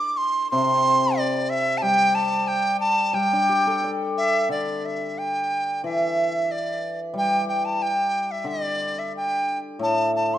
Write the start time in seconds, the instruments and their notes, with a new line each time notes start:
Already playing: dizi D6
0.17 dizi C6
0.51 hammered dulcimer C3, dizi C6
1.18 dizi D5
1.50 dizi E5
1.78 dizi A5
1.82 hammered dulcimer G3, dizi G5
2.15 dizi A5
2.48 dizi G5
2.80 dizi A5
3.13 hammered dulcimer G3, dizi G5
3.33 hammered dulcimer D4
3.49 hammered dulcimer G4
3.67 hammered dulcimer A4
3.84 hammered dulcimer D5
4.17 dizi E5
4.49 hammered dulcimer D3, dizi D5
4.85 dizi E5
5.18 dizi G5
5.84 hammered dulcimer E3, dizi E5
6.51 dizi D5
7.14 hammered dulcimer G3
7.18 dizi G5
7.48 dizi G5
7.65 dizi A5
7.82 dizi G5
8.31 dizi E5
8.44 hammered dulcimer D3, dizi D5
8.99 dizi E5
9.16 dizi G5
9.79 hammered dulcimer A2, dizi A5
10.16 dizi A5
10.34 dizi C6